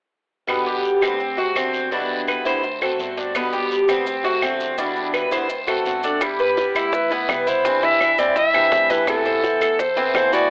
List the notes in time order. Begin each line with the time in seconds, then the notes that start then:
0.47 G1 B2 D3 G3 B3 G4, long guiro, claves
0.67 G4
0.84 short guiro
1.01 D2 D3 G3 B3 C4 G4, short guiro, claves
1.20 muted steel-string acoustic guitar stroke, long guiro
1.37 A3 C4 F#4
1.55 E2 D3 A3 C4 F#4, short guiro, claves
1.73 short guiro
1.91 B2 D3 G3 B3 D4 E4, long guiro
2.28 B4, short guiro, claves
2.45 D2 D3 G3 B3 E4 C5, short guiro
2.63 muted steel-string acoustic guitar stroke, long guiro
2.82 A3 C4 F#4 A4, claves
2.99 G1 D3 A3 C4 F#4, short guiro
3.17 D4, short guiro
3.35 B2 D3 G3 B3 G4, long guiro, claves, maracas
3.53 G4, maracas
3.71 short guiro, maracas
3.88 D2 D3 G3 B3 C4 G4, short guiro, claves, maracas
4.07 muted steel-string acoustic guitar stroke, long guiro, maracas
4.24 A3 C4 F#4, maracas
4.42 E2 D3 A3 C4 F#4, short guiro, claves, maracas
4.60 short guiro, maracas
4.78 B2 D3 G3 B3 D4 E4, long guiro, maracas
4.96 maracas
5.14 B4, short guiro, claves, maracas
5.31 D2 D3 G3 B3 E4 C5, short guiro, maracas
5.49 muted steel-string acoustic guitar stroke, long guiro, maracas
5.67 A3 C4 F#4 A4, claves, maracas
5.85 G1 D3 A3 C4 F#4, short guiro, maracas
6.03 D4 A4, short guiro, maracas
6.21 G3 B3 E4 G4, high bongo, long guiro, claves, maracas
6.39 B4, high bongo, maracas
6.57 G3 B3 E4, high bongo, short guiro, maracas
6.75 D2 E4, high bongo, short guiro, claves, maracas
6.92 B4, muted steel-string acoustic guitar stroke, high bongo, long guiro, maracas
7.10 B3 E4, high bongo, maracas
7.28 C2 G3 B3 E4 B4, high bongo, low bongo, short guiro, claves, maracas
7.47 B3 E4 C5, short guiro, maracas
7.65 C3 E3 G3 C4 D4 E4, high bongo, long guiro, maracas
7.83 E4 E5, high bongo, maracas
8.00 E3 G3 D4 E4, high bongo, short guiro, claves, maracas
8.18 G2 C4 D5, high bongo, short guiro, maracas
8.36 E4 E5, muted steel-string acoustic guitar stroke, high bongo, long guiro, maracas
8.54 E3 G3 C4 D4 E4, claves, maracas
8.72 A2 E3 G3 D4 E4, high bongo, low bongo, short guiro, maracas
8.90 E3 G3 D4 E4 A4 B4, high bongo, short guiro, maracas
9.07 C3 E3 A3 B3 E4 A4, high bongo, long guiro, claves, maracas
9.26 C5, high bongo, maracas
9.43 E3 A3 B3 E4, high bongo, short guiro, maracas
9.61 E2 A4, high bongo, short guiro, claves, maracas
9.79 C5, muted steel-string acoustic guitar stroke, high bongo, long guiro, maracas
9.96 E3 A3 B3 C4 E4, high bongo, maracas
10.14 D2 E3 A3 B3 E4 C5, high bongo, low bongo, short guiro, claves, maracas
10.32 E3 A3 B3 E4 F#4 D5, short guiro, maracas